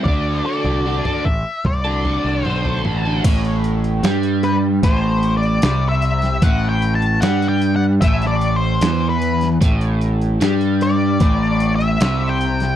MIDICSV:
0, 0, Header, 1, 6, 480
1, 0, Start_track
1, 0, Tempo, 797024
1, 34, Time_signature, 4, 2, 24, 8
1, 7684, End_track
2, 0, Start_track
2, 0, Title_t, "Lead electric guitar"
2, 0, Program_c, 0, 29
2, 23, Note_on_c, 0, 74, 67
2, 268, Note_off_c, 0, 74, 0
2, 276, Note_on_c, 0, 74, 76
2, 753, Note_on_c, 0, 76, 87
2, 769, Note_off_c, 0, 74, 0
2, 999, Note_on_c, 0, 74, 73
2, 1001, Note_off_c, 0, 76, 0
2, 1475, Note_off_c, 0, 74, 0
2, 1475, Note_on_c, 0, 72, 73
2, 1692, Note_off_c, 0, 72, 0
2, 2674, Note_on_c, 0, 71, 79
2, 2739, Note_off_c, 0, 71, 0
2, 2917, Note_on_c, 0, 72, 82
2, 3213, Note_off_c, 0, 72, 0
2, 3236, Note_on_c, 0, 74, 78
2, 3544, Note_off_c, 0, 74, 0
2, 3546, Note_on_c, 0, 76, 81
2, 3872, Note_on_c, 0, 78, 77
2, 3879, Note_off_c, 0, 76, 0
2, 4026, Note_off_c, 0, 78, 0
2, 4029, Note_on_c, 0, 79, 98
2, 4185, Note_off_c, 0, 79, 0
2, 4187, Note_on_c, 0, 81, 102
2, 4339, Note_off_c, 0, 81, 0
2, 4343, Note_on_c, 0, 78, 97
2, 4506, Note_off_c, 0, 78, 0
2, 4508, Note_on_c, 0, 79, 89
2, 4660, Note_off_c, 0, 79, 0
2, 4673, Note_on_c, 0, 78, 89
2, 4716, Note_off_c, 0, 78, 0
2, 4824, Note_on_c, 0, 76, 91
2, 4979, Note_off_c, 0, 76, 0
2, 4981, Note_on_c, 0, 74, 88
2, 5152, Note_off_c, 0, 74, 0
2, 5156, Note_on_c, 0, 72, 77
2, 5475, Note_off_c, 0, 72, 0
2, 5477, Note_on_c, 0, 71, 63
2, 5699, Note_off_c, 0, 71, 0
2, 6520, Note_on_c, 0, 74, 90
2, 7077, Note_off_c, 0, 74, 0
2, 7080, Note_on_c, 0, 76, 89
2, 7404, Note_on_c, 0, 79, 98
2, 7406, Note_off_c, 0, 76, 0
2, 7684, Note_off_c, 0, 79, 0
2, 7684, End_track
3, 0, Start_track
3, 0, Title_t, "Overdriven electric guitar"
3, 0, Program_c, 1, 29
3, 32, Note_on_c, 1, 50, 70
3, 41, Note_on_c, 1, 62, 88
3, 43, Note_on_c, 1, 66, 80
3, 48, Note_on_c, 1, 69, 93
3, 267, Note_off_c, 1, 50, 0
3, 273, Note_off_c, 1, 62, 0
3, 274, Note_on_c, 1, 50, 74
3, 276, Note_off_c, 1, 66, 0
3, 279, Note_off_c, 1, 69, 0
3, 280, Note_on_c, 1, 62, 61
3, 283, Note_on_c, 1, 66, 70
3, 286, Note_on_c, 1, 69, 70
3, 389, Note_off_c, 1, 69, 0
3, 395, Note_off_c, 1, 66, 0
3, 397, Note_on_c, 1, 69, 60
3, 401, Note_off_c, 1, 62, 0
3, 402, Note_on_c, 1, 66, 50
3, 408, Note_on_c, 1, 62, 48
3, 507, Note_off_c, 1, 50, 0
3, 512, Note_off_c, 1, 62, 0
3, 515, Note_on_c, 1, 50, 78
3, 516, Note_off_c, 1, 66, 0
3, 519, Note_off_c, 1, 69, 0
3, 519, Note_on_c, 1, 62, 81
3, 523, Note_on_c, 1, 66, 72
3, 526, Note_on_c, 1, 69, 71
3, 628, Note_off_c, 1, 69, 0
3, 633, Note_off_c, 1, 66, 0
3, 635, Note_on_c, 1, 69, 67
3, 640, Note_off_c, 1, 62, 0
3, 640, Note_on_c, 1, 66, 61
3, 647, Note_on_c, 1, 62, 55
3, 752, Note_off_c, 1, 50, 0
3, 754, Note_off_c, 1, 62, 0
3, 755, Note_off_c, 1, 66, 0
3, 756, Note_off_c, 1, 69, 0
3, 1111, Note_on_c, 1, 69, 65
3, 1117, Note_on_c, 1, 66, 51
3, 1122, Note_on_c, 1, 62, 53
3, 1232, Note_off_c, 1, 62, 0
3, 1233, Note_on_c, 1, 50, 64
3, 1236, Note_off_c, 1, 66, 0
3, 1239, Note_off_c, 1, 69, 0
3, 1239, Note_on_c, 1, 62, 56
3, 1243, Note_on_c, 1, 66, 62
3, 1246, Note_on_c, 1, 69, 61
3, 1464, Note_off_c, 1, 50, 0
3, 1469, Note_off_c, 1, 62, 0
3, 1471, Note_on_c, 1, 50, 80
3, 1474, Note_off_c, 1, 66, 0
3, 1476, Note_on_c, 1, 62, 82
3, 1478, Note_off_c, 1, 69, 0
3, 1482, Note_on_c, 1, 66, 80
3, 1485, Note_on_c, 1, 69, 79
3, 1585, Note_off_c, 1, 69, 0
3, 1592, Note_on_c, 1, 69, 67
3, 1594, Note_off_c, 1, 66, 0
3, 1598, Note_off_c, 1, 62, 0
3, 1601, Note_on_c, 1, 66, 57
3, 1606, Note_on_c, 1, 62, 51
3, 1704, Note_off_c, 1, 50, 0
3, 1709, Note_off_c, 1, 62, 0
3, 1711, Note_on_c, 1, 50, 60
3, 1712, Note_off_c, 1, 66, 0
3, 1716, Note_on_c, 1, 62, 57
3, 1719, Note_off_c, 1, 69, 0
3, 1719, Note_on_c, 1, 66, 65
3, 1726, Note_on_c, 1, 69, 63
3, 1828, Note_off_c, 1, 69, 0
3, 1833, Note_off_c, 1, 66, 0
3, 1836, Note_on_c, 1, 69, 56
3, 1841, Note_off_c, 1, 62, 0
3, 1841, Note_on_c, 1, 66, 56
3, 1848, Note_on_c, 1, 62, 47
3, 1938, Note_off_c, 1, 50, 0
3, 1940, Note_off_c, 1, 69, 0
3, 1943, Note_off_c, 1, 66, 0
3, 1947, Note_off_c, 1, 62, 0
3, 1956, Note_on_c, 1, 45, 96
3, 2428, Note_off_c, 1, 45, 0
3, 2434, Note_on_c, 1, 55, 100
3, 2907, Note_off_c, 1, 55, 0
3, 2916, Note_on_c, 1, 45, 95
3, 3387, Note_off_c, 1, 45, 0
3, 3395, Note_on_c, 1, 48, 102
3, 3867, Note_off_c, 1, 48, 0
3, 3873, Note_on_c, 1, 45, 96
3, 4346, Note_off_c, 1, 45, 0
3, 4351, Note_on_c, 1, 55, 98
3, 4825, Note_off_c, 1, 55, 0
3, 4831, Note_on_c, 1, 45, 96
3, 5305, Note_off_c, 1, 45, 0
3, 5311, Note_on_c, 1, 52, 108
3, 5785, Note_off_c, 1, 52, 0
3, 5788, Note_on_c, 1, 45, 108
3, 6264, Note_off_c, 1, 45, 0
3, 6274, Note_on_c, 1, 55, 102
3, 6747, Note_off_c, 1, 55, 0
3, 6751, Note_on_c, 1, 45, 99
3, 7226, Note_off_c, 1, 45, 0
3, 7230, Note_on_c, 1, 48, 107
3, 7684, Note_off_c, 1, 48, 0
3, 7684, End_track
4, 0, Start_track
4, 0, Title_t, "Picked electric bass"
4, 0, Program_c, 2, 34
4, 31, Note_on_c, 2, 38, 83
4, 244, Note_off_c, 2, 38, 0
4, 388, Note_on_c, 2, 36, 76
4, 602, Note_off_c, 2, 36, 0
4, 754, Note_on_c, 2, 33, 82
4, 860, Note_off_c, 2, 33, 0
4, 992, Note_on_c, 2, 36, 83
4, 1310, Note_off_c, 2, 36, 0
4, 1352, Note_on_c, 2, 36, 68
4, 1459, Note_off_c, 2, 36, 0
4, 1474, Note_on_c, 2, 35, 62
4, 1690, Note_off_c, 2, 35, 0
4, 1710, Note_on_c, 2, 33, 65
4, 1928, Note_off_c, 2, 33, 0
4, 1953, Note_on_c, 2, 33, 84
4, 2409, Note_off_c, 2, 33, 0
4, 2428, Note_on_c, 2, 43, 91
4, 2887, Note_off_c, 2, 43, 0
4, 2907, Note_on_c, 2, 33, 86
4, 3366, Note_off_c, 2, 33, 0
4, 3392, Note_on_c, 2, 36, 83
4, 3849, Note_off_c, 2, 36, 0
4, 3866, Note_on_c, 2, 33, 99
4, 4326, Note_off_c, 2, 33, 0
4, 4348, Note_on_c, 2, 43, 90
4, 4807, Note_off_c, 2, 43, 0
4, 4827, Note_on_c, 2, 33, 93
4, 5286, Note_off_c, 2, 33, 0
4, 5308, Note_on_c, 2, 40, 76
4, 5767, Note_off_c, 2, 40, 0
4, 5789, Note_on_c, 2, 33, 89
4, 6247, Note_off_c, 2, 33, 0
4, 6270, Note_on_c, 2, 43, 86
4, 6728, Note_off_c, 2, 43, 0
4, 6748, Note_on_c, 2, 33, 90
4, 7207, Note_off_c, 2, 33, 0
4, 7232, Note_on_c, 2, 36, 89
4, 7684, Note_off_c, 2, 36, 0
4, 7684, End_track
5, 0, Start_track
5, 0, Title_t, "Muted overdriven electric guitar strokes"
5, 759, Note_on_c, 9, 29, 40
5, 819, Note_off_c, 9, 29, 0
5, 7684, End_track
6, 0, Start_track
6, 0, Title_t, "Drums"
6, 33, Note_on_c, 9, 43, 82
6, 34, Note_on_c, 9, 36, 114
6, 93, Note_off_c, 9, 43, 0
6, 95, Note_off_c, 9, 36, 0
6, 393, Note_on_c, 9, 43, 70
6, 454, Note_off_c, 9, 43, 0
6, 633, Note_on_c, 9, 43, 77
6, 633, Note_on_c, 9, 47, 79
6, 694, Note_off_c, 9, 43, 0
6, 694, Note_off_c, 9, 47, 0
6, 754, Note_on_c, 9, 36, 62
6, 814, Note_off_c, 9, 36, 0
6, 993, Note_on_c, 9, 43, 82
6, 993, Note_on_c, 9, 47, 66
6, 994, Note_on_c, 9, 36, 89
6, 1053, Note_off_c, 9, 43, 0
6, 1053, Note_off_c, 9, 47, 0
6, 1054, Note_off_c, 9, 36, 0
6, 1234, Note_on_c, 9, 43, 80
6, 1294, Note_off_c, 9, 43, 0
6, 1477, Note_on_c, 9, 47, 79
6, 1537, Note_off_c, 9, 47, 0
6, 1596, Note_on_c, 9, 43, 75
6, 1656, Note_off_c, 9, 43, 0
6, 1715, Note_on_c, 9, 47, 79
6, 1776, Note_off_c, 9, 47, 0
6, 1953, Note_on_c, 9, 36, 113
6, 1954, Note_on_c, 9, 42, 98
6, 1954, Note_on_c, 9, 49, 126
6, 2013, Note_off_c, 9, 36, 0
6, 2014, Note_off_c, 9, 42, 0
6, 2014, Note_off_c, 9, 49, 0
6, 2075, Note_on_c, 9, 42, 44
6, 2135, Note_off_c, 9, 42, 0
6, 2192, Note_on_c, 9, 42, 69
6, 2252, Note_off_c, 9, 42, 0
6, 2313, Note_on_c, 9, 42, 41
6, 2374, Note_off_c, 9, 42, 0
6, 2430, Note_on_c, 9, 42, 85
6, 2437, Note_on_c, 9, 38, 106
6, 2490, Note_off_c, 9, 42, 0
6, 2497, Note_off_c, 9, 38, 0
6, 2549, Note_on_c, 9, 42, 49
6, 2609, Note_off_c, 9, 42, 0
6, 2669, Note_on_c, 9, 42, 73
6, 2729, Note_off_c, 9, 42, 0
6, 2910, Note_on_c, 9, 36, 104
6, 2910, Note_on_c, 9, 42, 96
6, 2970, Note_off_c, 9, 36, 0
6, 2971, Note_off_c, 9, 42, 0
6, 3148, Note_on_c, 9, 42, 66
6, 3209, Note_off_c, 9, 42, 0
6, 3270, Note_on_c, 9, 42, 37
6, 3330, Note_off_c, 9, 42, 0
6, 3385, Note_on_c, 9, 42, 93
6, 3392, Note_on_c, 9, 38, 124
6, 3445, Note_off_c, 9, 42, 0
6, 3452, Note_off_c, 9, 38, 0
6, 3626, Note_on_c, 9, 42, 72
6, 3686, Note_off_c, 9, 42, 0
6, 3746, Note_on_c, 9, 42, 42
6, 3753, Note_on_c, 9, 38, 35
6, 3806, Note_off_c, 9, 42, 0
6, 3814, Note_off_c, 9, 38, 0
6, 3866, Note_on_c, 9, 42, 102
6, 3868, Note_on_c, 9, 36, 108
6, 3927, Note_off_c, 9, 42, 0
6, 3928, Note_off_c, 9, 36, 0
6, 4108, Note_on_c, 9, 42, 68
6, 4168, Note_off_c, 9, 42, 0
6, 4228, Note_on_c, 9, 42, 45
6, 4288, Note_off_c, 9, 42, 0
6, 4347, Note_on_c, 9, 42, 93
6, 4354, Note_on_c, 9, 38, 111
6, 4407, Note_off_c, 9, 42, 0
6, 4415, Note_off_c, 9, 38, 0
6, 4470, Note_on_c, 9, 42, 47
6, 4531, Note_off_c, 9, 42, 0
6, 4587, Note_on_c, 9, 42, 77
6, 4647, Note_off_c, 9, 42, 0
6, 4829, Note_on_c, 9, 36, 105
6, 4829, Note_on_c, 9, 42, 104
6, 4889, Note_off_c, 9, 36, 0
6, 4889, Note_off_c, 9, 42, 0
6, 4948, Note_on_c, 9, 42, 47
6, 4955, Note_on_c, 9, 38, 32
6, 5008, Note_off_c, 9, 42, 0
6, 5016, Note_off_c, 9, 38, 0
6, 5067, Note_on_c, 9, 42, 76
6, 5127, Note_off_c, 9, 42, 0
6, 5308, Note_on_c, 9, 42, 111
6, 5315, Note_on_c, 9, 38, 108
6, 5368, Note_off_c, 9, 42, 0
6, 5375, Note_off_c, 9, 38, 0
6, 5551, Note_on_c, 9, 42, 85
6, 5611, Note_off_c, 9, 42, 0
6, 5667, Note_on_c, 9, 42, 43
6, 5675, Note_on_c, 9, 38, 32
6, 5728, Note_off_c, 9, 42, 0
6, 5735, Note_off_c, 9, 38, 0
6, 5790, Note_on_c, 9, 36, 110
6, 5791, Note_on_c, 9, 42, 116
6, 5850, Note_off_c, 9, 36, 0
6, 5852, Note_off_c, 9, 42, 0
6, 5909, Note_on_c, 9, 42, 52
6, 5969, Note_off_c, 9, 42, 0
6, 6031, Note_on_c, 9, 42, 67
6, 6091, Note_off_c, 9, 42, 0
6, 6152, Note_on_c, 9, 42, 44
6, 6212, Note_off_c, 9, 42, 0
6, 6270, Note_on_c, 9, 42, 83
6, 6277, Note_on_c, 9, 38, 102
6, 6330, Note_off_c, 9, 42, 0
6, 6337, Note_off_c, 9, 38, 0
6, 6389, Note_on_c, 9, 42, 46
6, 6450, Note_off_c, 9, 42, 0
6, 6511, Note_on_c, 9, 42, 73
6, 6571, Note_off_c, 9, 42, 0
6, 6746, Note_on_c, 9, 42, 90
6, 6749, Note_on_c, 9, 36, 106
6, 6806, Note_off_c, 9, 42, 0
6, 6810, Note_off_c, 9, 36, 0
6, 6988, Note_on_c, 9, 42, 72
6, 7048, Note_off_c, 9, 42, 0
6, 7110, Note_on_c, 9, 42, 37
6, 7170, Note_off_c, 9, 42, 0
6, 7230, Note_on_c, 9, 42, 98
6, 7237, Note_on_c, 9, 38, 115
6, 7290, Note_off_c, 9, 42, 0
6, 7297, Note_off_c, 9, 38, 0
6, 7473, Note_on_c, 9, 42, 69
6, 7533, Note_off_c, 9, 42, 0
6, 7590, Note_on_c, 9, 42, 43
6, 7597, Note_on_c, 9, 38, 32
6, 7650, Note_off_c, 9, 42, 0
6, 7657, Note_off_c, 9, 38, 0
6, 7684, End_track
0, 0, End_of_file